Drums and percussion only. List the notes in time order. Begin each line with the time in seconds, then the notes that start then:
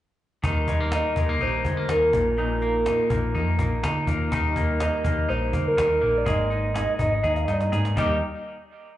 0.44 cajon bass
0.68 cajon bass
0.92 cajon slap
1.16 cajon bass
1.40 cajon slap
1.65 cajon bass
1.89 cajon slap
2.13 cajon bass
2.37 cajon slap
2.61 cajon slap
2.86 cajon slap
3.10 cajon bass
3.35 cajon slap
3.59 cajon bass
3.84 cajon slap
4.07 cajon bass
4.32 cajon bass
4.56 cajon bass
4.80 cajon slap
5.05 cajon bass
5.29 cajon slap
5.53 cajon bass
5.78 cajon slap
6.26 cajon bass
6.51 cajon slap
6.76 cajon slap
6.99 cajon bass
7.24 cajon slap
7.36 cajon slap
7.48 cajon slap
7.61 cajon slap
7.73 cajon slap
7.85 cajon slap
7.97 cajon bass